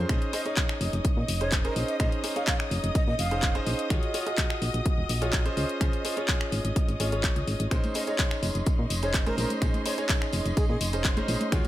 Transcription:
Already playing: string section A#4 C6
0.09 fm bass A#1, grand piano C#4 D#4 G#4 C5, string section D#5 D#6, finger snap, kick, closed hi-hat
0.22 closed hi-hat
0.33 grand piano C#4 D#4 G#4 C5, flute D#5, open hi-hat
0.46 grand piano C#4 D#4 G#4 C#5, flute D#5, closed hi-hat
0.57 finger snap, kick, clap, closed hi-hat
0.69 finger snap
0.81 fm bass F1, open hi-hat
0.93 fm bass F1, closed hi-hat
1.05 kick, closed hi-hat
1.17 fm bass A#2
1.28 fm bass F1, open hi-hat
1.41 grand piano C#4 D#4 G#4 C5, flute C#5, closed hi-hat
1.52 kick, clap, closed hi-hat
1.65 grand piano C#4 D#4 G#4 C5, flute A#4, closed hi-hat
1.76 fm bass A#1, open hi-hat
1.88 flute D#5, closed hi-hat
2.00 fm bass A#1, grand piano C#4 D#4 G#4 C5, flute D#5, finger snap, kick, closed hi-hat
2.12 closed hi-hat
2.24 grand piano C#4 D#4 G#4 C5, open hi-hat
2.36 grand piano C#4 D#4 G#4 C#5, flute F5, closed hi-hat
2.47 flute F5, finger snap, kick, clap, closed hi-hat
2.60 finger snap
2.71 fm bass F1, open hi-hat
2.84 fm bass F1, closed hi-hat
2.95 flute D#5, kick, closed hi-hat
3.07 fm bass A#2, flute D#5
3.19 fm bass F1, flute F5, open hi-hat
3.31 grand piano C#4 D#4 G#4 C5, closed hi-hat
3.42 kick, clap, closed hi-hat
3.55 grand piano C#4 D#4 G#4 C5, closed hi-hat
3.67 fm bass A#1, open hi-hat
3.79 closed hi-hat
3.90 fm bass D#2, grand piano F4 F#4 G#4 C#5, finger snap, kick, closed hi-hat
4.03 closed hi-hat
4.14 grand piano F4 F#4 G#4 C#5, open hi-hat
4.27 grand piano F4 F#4 G#4 D#5, closed hi-hat
4.38 finger snap, kick, clap, closed hi-hat
4.50 finger snap
4.62 fm bass A#1, open hi-hat
4.74 fm bass A#1, closed hi-hat
4.86 kick, closed hi-hat
4.98 fm bass D#1
5.09 fm bass A#1, open hi-hat
5.22 grand piano F4 F#4 G#4 C#5, closed hi-hat
5.33 kick, clap, closed hi-hat
5.46 grand piano C#4 F4 G#4 C5, closed hi-hat
5.57 fm bass C#2, open hi-hat
5.69 closed hi-hat
5.81 fm bass C#2, grand piano C#4 F4 G#4 C5, finger snap, kick, closed hi-hat
5.93 closed hi-hat
6.05 grand piano C#4 F4 G#4 C5, open hi-hat
6.17 grand piano C#4 F4 G#4 C#5, closed hi-hat
6.28 finger snap, kick, clap, closed hi-hat
6.41 finger snap
6.52 fm bass G#1, open hi-hat
6.65 fm bass G#1, closed hi-hat
6.76 kick, closed hi-hat
6.88 fm bass G#1, closed hi-hat
7.00 fm bass G#1, grand piano C#4 F4 G#4 C#5, open hi-hat
7.12 grand piano C#4 F4 G#4 C#5, closed hi-hat
7.23 kick, clap, closed hi-hat
7.36 fm bass C#2, closed hi-hat
7.48 fm bass G#1, open hi-hat
7.60 fm bass G#1, closed hi-hat
7.71 fm bass A#1, grand piano C#4 D#4 G#4 C5, string section D#5 C6, finger snap, kick, closed hi-hat, tambourine
7.84 closed hi-hat, tambourine, high conga
7.94 grand piano C#4 D#4 G#4 C5, flute D#5, open hi-hat, tambourine
8.07 grand piano C#4 D#4 G#4 C#5, flute D#5, closed hi-hat, tambourine
8.19 finger snap, kick, clap, closed hi-hat, tambourine
8.31 finger snap, tambourine
8.43 fm bass F1, open hi-hat, tambourine
8.55 fm bass F1, closed hi-hat, tambourine
8.66 kick, closed hi-hat, tambourine
8.79 fm bass A#2
8.90 fm bass F1, open hi-hat, tambourine
9.03 grand piano C#4 D#4 G#4 C5, flute C#5, closed hi-hat, tambourine
9.14 kick, clap, closed hi-hat, tambourine
9.26 grand piano C#4 D#4 G#4 C5, flute A#4, closed hi-hat, high conga
9.37 fm bass A#1, flute A#4, open hi-hat, tambourine, high conga
9.50 closed hi-hat, tambourine, high conga
9.62 fm bass A#1, grand piano C#4 D#4 G#4 C5, finger snap, kick, closed hi-hat, tambourine
9.74 closed hi-hat, tambourine, high conga
9.85 grand piano C#4 D#4 G#4 C5, flute C#5, open hi-hat, tambourine
9.98 grand piano C#4 D#4 G#4 C#5, flute C#5, closed hi-hat, tambourine
10.09 finger snap, kick, clap, closed hi-hat, tambourine
10.22 finger snap, tambourine
10.33 fm bass F1, open hi-hat, tambourine
10.45 fm bass F1, closed hi-hat, tambourine
10.57 flute G#4, kick, closed hi-hat, tambourine
10.69 fm bass A#2, flute G#4
10.81 fm bass F1, open hi-hat, tambourine
10.93 grand piano C#4 D#4 G#4 C5, closed hi-hat, tambourine
11.04 kick, clap, closed hi-hat, tambourine
11.17 grand piano C#4 D#4 G#4 C5, closed hi-hat, high conga
11.28 fm bass A#1, open hi-hat, tambourine, high conga
11.41 closed hi-hat, tambourine, high conga
11.52 fm bass D#2, grand piano F4 F#4 G#4 C#5, finger snap, kick, closed hi-hat, tambourine
11.65 tambourine

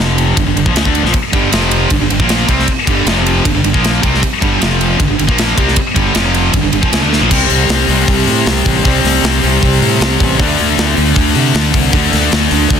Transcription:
0.00 fingered electric bass F1, distorted electric guitar F2 C3 F3
0.18 ride
0.37 fingered electric bass G1, distorted electric guitar G2 D3, kick, ride
0.46 fingered electric bass G1, distorted electric guitar G2 D3
0.56 fingered electric bass G1, distorted electric guitar G2 D3, ride
0.66 fingered electric bass A#1, distorted electric guitar A#2 F3, kick
0.74 fingered electric bass C#2, distorted electric guitar C#3 G#3, snare, ride
0.85 fingered electric bass D2, distorted electric guitar D3 A3 D4, kick
0.95 ride
1.03 fingered electric bass A#1, distorted electric guitar A#2 F3, snare
1.13 muted distorted electric guitar stroke, muted fingered electric bass stroke, kick, ride
1.32 fingered electric bass G1, distorted electric guitar G2 D3 G3, kick, ride
1.50 fingered electric bass F1, distorted electric guitar F2 C3 F3, snare, ride
1.71 ride
1.90 fingered electric bass G1, distorted electric guitar G2 D3, kick, ride
2.00 fingered electric bass G1, distorted electric guitar G2 D3
2.10 fingered electric bass G1, distorted electric guitar G2 D3, ride
2.19 fingered electric bass A#1, distorted electric guitar A#2 F3 A#3, kick
2.29 snare, ride
2.48 fingered electric bass C2, distorted electric guitar C3 G3 C4, kick, ride
2.59 snare
2.68 muted fingered electric bass stroke, muted distorted electric guitar stroke, kick, ride
2.87 fingered electric bass G1, distorted electric guitar G2 D3 G3, kick, ride
3.06 fingered electric bass F1, distorted electric guitar F2 C3 F3, snare, ride
3.26 ride
3.45 fingered electric bass G1, distorted electric guitar G2 D3, kick, ride
3.55 fingered electric bass G1, distorted electric guitar G2 D3
3.64 fingered electric bass G1, distorted electric guitar G2 D3, ride
3.74 fingered electric bass A#1, distorted electric guitar A#2 F3 A#3, kick
3.84 snare, ride
4.03 fingered electric bass C2, distorted electric guitar C3 G3 C4, kick, ride
4.15 snare
4.23 muted fingered electric bass stroke, muted distorted electric guitar stroke, kick, ride
4.41 fingered electric bass G1, distorted electric guitar G2 D3 G3, kick, ride
4.60 fingered electric bass F1, distorted electric guitar F2 C3 F3, snare, ride
4.81 ride
5.00 fingered electric bass G1, distorted electric guitar G2 D3, kick, ride
5.09 fingered electric bass G1, distorted electric guitar G2 D3
5.19 fingered electric bass G1, distorted electric guitar G2 D3, ride
5.28 fingered electric bass A#1, distorted electric guitar A#2 F3 A#3, kick
5.38 snare, ride
5.56 fingered electric bass C2, distorted electric guitar C3 G3 C4, kick, ride
5.68 snare
5.76 muted distorted electric guitar stroke, muted fingered electric bass stroke, kick, ride
5.94 fingered electric bass G1, distorted electric guitar G2 D3 G3, kick, ride
6.14 fingered electric bass F1, distorted electric guitar F2 C3 F3, snare, ride
6.34 ride
6.54 fingered electric bass G1, distorted electric guitar G2 D3, kick, ride
6.63 fingered electric bass G1, distorted electric guitar G2 D3
6.72 fingered electric bass G1, distorted electric guitar G2 D3, ride
6.81 fingered electric bass A#1, distorted electric guitar A#2 F3, kick
6.91 fingered electric bass C#2, distorted electric guitar C#3 G#3, snare, ride
7.01 fingered electric bass D2, distorted electric guitar D3 A3 D4
7.13 snare
7.20 fingered electric bass A#1, distorted electric guitar A#2 F3
7.29 fingered electric bass C2, distorted electric guitar C3 G3 C4, kick, crash
7.50 fingered electric bass C2, open hi-hat
7.69 fingered electric bass C2, snare, open hi-hat
7.88 fingered electric bass C2, distorted electric guitar C3 G3 C4, open hi-hat
8.08 fingered electric bass C2, kick, open hi-hat
8.27 fingered electric bass A2, open hi-hat
8.46 fingered electric bass C2, snare, open hi-hat
8.66 fingered electric bass A1, kick, open hi-hat
8.84 fingered electric bass C2, distorted electric guitar C3 G3 C4, kick, open hi-hat
9.04 fingered electric bass C2, snare, open hi-hat
9.23 fingered electric bass C2, snare, open hi-hat
9.42 fingered electric bass C2, distorted electric guitar C3 G3 C4, open hi-hat
9.63 fingered electric bass C2, kick, open hi-hat
9.81 fingered electric bass A2, open hi-hat
10.01 fingered electric bass C2, snare, open hi-hat
10.20 fingered electric bass A1, kick, open hi-hat
10.38 fingered electric bass D2, distorted electric guitar D3 A3 D4, kick, open hi-hat
10.58 fingered electric bass D2, open hi-hat
10.78 fingered electric bass D2, snare, open hi-hat
10.96 fingered electric bass D2, distorted electric guitar D3 A3 D4, open hi-hat
11.16 fingered electric bass D2, kick, open hi-hat
11.35 fingered electric bass C3, open hi-hat
11.54 fingered electric bass D2, snare, open hi-hat
11.74 fingered electric bass C2, kick, open hi-hat
11.92 fingered electric bass D2, distorted electric guitar D3 A3 D4, kick, open hi-hat
12.13 fingered electric bass D2, snare, open hi-hat
12.32 fingered electric bass D2, snare, open hi-hat
12.50 fingered electric bass D2, distorted electric guitar D3 A3 D4, open hi-hat
12.70 fingered electric bass D2, kick, open hi-hat

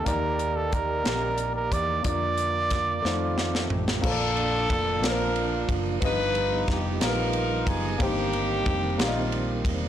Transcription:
Already playing: french horn section A#3 G4, tonewheel organ A#3 D#4 G4
0.05 fingered electric bass D#2, grand piano D#3 A#3 D#4 G4 D5, trumpet A#4, tonewheel organ D5, french horn section D5, kick, closed hi-hat
0.39 closed hi-hat
0.56 trumpet A4
0.73 trumpet A#4, kick, closed hi-hat
1.04 fingered electric bass A#1, grand piano A#3 D#4 G4 D5, snare, closed hi-hat
1.38 closed hi-hat
1.56 trumpet A#4
1.72 fingered electric bass E2, trumpet D5, kick, closed hi-hat
2.03 fingered electric bass F2, tonewheel organ D3 F3 F4, grand piano A#3 D4 F4 D5, french horn section D4 F4 A#4, trumpet D5, kick, closed hi-hat
2.37 closed hi-hat
2.70 kick, snare, closed hi-hat
3.02 fingered electric bass F2, tonewheel organ D#3 A3 C4 F4, grand piano A3 D#4 F4 C5, french horn section C4 D#4 A4, horn section F4, snare
3.06 horn section A3 C4
3.38 snare
3.55 snare
3.70 fingered electric bass A1, horn section G4, floor tom
3.88 snare
4.01 fingered electric bass A#1, grand piano A#2 A#3 F4 A4 C5, tonewheel organ F3 A#3 D4 F4, kick, crash
4.06 horn section D4 F4 A4
4.11 grand piano D5
4.37 ride
4.70 fingered electric bass F1, kick, ride
5.01 fingered electric bass A#1, grand piano A#3 F4 A#4 A5, snare, ride
5.05 horn section D4 F4 A#4
5.10 grand piano C5
5.36 ride
5.69 fingered electric bass F#1, kick, ride
6.00 fingered electric bass G1, grand piano G2 B3 F4 G4 D#5, tonewheel organ F3 G3 B3 D#4, horn section D#4 F4, kick, ride
6.05 horn section B4
6.35 ride
6.68 fingered electric bass F1, horn section G4, kick, snare, ride
7.00 fingered electric bass A#1, grand piano A#3 F4 G4 A#4, horn section D#4 F4 A#4, snare, ride
7.06 grand piano B3
7.33 ride
7.67 fingered electric bass F#1, horn section G#4, kick, ride
7.98 fingered electric bass G1, grand piano G2 A#3 D4 G4 C5, tonewheel organ D#3 A#3 C4, horn section A#3 D#4 G4, kick, ride
8.06 grand piano D#4
8.33 ride
8.66 fingered electric bass F1, kick, ride
8.98 fingered electric bass A#1, grand piano A#3 D#4 G4 D5, horn section A#3 C4 F4, snare, ride
9.07 grand piano D#5
9.32 ride
9.65 fingered electric bass E1, kick, ride

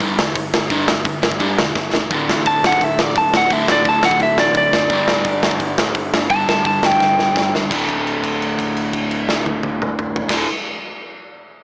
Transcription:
0.00 picked electric bass G1, overdriven electric guitar G2 D3 G3, kick, open hi-hat
0.18 picked electric bass E1, overdriven electric guitar G2 D3, snare
0.35 picked electric bass G1, overdriven electric guitar G2 D3, kick, open hi-hat
0.54 picked electric bass G1, overdriven electric guitar G2 D3, snare
0.70 picked electric bass G1, overdriven electric guitar G2 D3 G3, kick, open hi-hat
0.88 picked electric bass G1, overdriven electric guitar G2 D3, snare
1.05 picked electric bass G1, overdriven electric guitar G2 D3, kick, open hi-hat
1.23 picked electric bass G1, overdriven electric guitar G2 D3, snare
1.32 kick
1.40 picked electric bass G1, overdriven electric guitar G2 D3 G3, kick, open hi-hat
1.59 picked electric bass E1, overdriven electric guitar G2 D3, snare
1.75 picked electric bass G1, overdriven electric guitar G2 D3, kick, snare
1.94 picked electric bass E1, overdriven electric guitar G2 D3, snare
2.11 picked electric bass D1, overdriven electric guitar D2 A2 D3, kick, open hi-hat
2.29 picked electric bass A1, snare
2.46 picked electric bass D1, lead electric guitar A5, kick, open hi-hat
2.62 picked electric bass D1, snare
2.67 lead electric guitar F#5
2.72 kick
2.81 picked electric bass D1, lead electric guitar E5, kick, open hi-hat
2.98 picked electric bass A1, lead electric guitar D5, snare
3.16 picked electric bass D1, lead electric guitar A5, kick, open hi-hat
3.34 picked electric bass D1, lead electric guitar F#5, snare
3.50 picked electric bass D1, overdriven electric guitar D2 A2 D3, lead electric guitar E5, kick, open hi-hat
3.68 picked electric bass A1, lead electric guitar D5, snare
3.85 picked electric bass D1, lead electric guitar A5, kick, open hi-hat
4.02 picked electric bass D1, lead electric guitar F#5, snare
4.11 kick
4.20 picked electric bass D1, lead electric guitar E5, kick, open hi-hat
4.37 picked electric bass A1, lead electric guitar D5, snare
4.54 picked electric bass D1, lead electric guitar D5, kick, open hi-hat
4.72 picked electric bass F#1, snare
4.90 picked electric bass G1, overdriven electric guitar G2 D3 G3, kick, open hi-hat
5.08 picked electric bass D1, snare
5.25 picked electric bass G1, kick, open hi-hat
5.43 picked electric bass G1, snare
5.51 kick
5.60 picked electric bass G1, kick, open hi-hat
5.78 picked electric bass D1, snare
5.95 picked electric bass G1, kick, open hi-hat
6.14 picked electric bass G1, snare
6.30 picked electric bass G1, overdriven electric guitar G2 D3 G3, lead electric guitar A5, kick, open hi-hat
6.47 picked electric bass D1, lead electric guitar A5, snare
6.65 picked electric bass G1, lead electric guitar A5, kick, open hi-hat
6.82 picked electric bass G1, lead electric guitar G5, snare
6.92 kick
7.00 picked electric bass G1, kick, snare
7.18 picked electric bass D1, snare
7.36 picked electric bass G1, kick, snare
7.53 picked electric bass C#2, snare
7.70 picked electric bass D1, overdriven electric guitar D2 A2 D3, kick, crash
7.89 kick, crash
8.07 crash
8.24 kick, crash
8.42 crash
8.59 kick, crash
8.77 crash
8.93 kick, crash
9.11 crash
9.29 snare
9.46 high tom
9.63 high tom
9.82 mid tom
9.99 mid tom
10.16 floor tom
10.29 picked electric bass D1, overdriven electric guitar D2 A2, kick, snare, crash
10.33 overdriven electric guitar D3

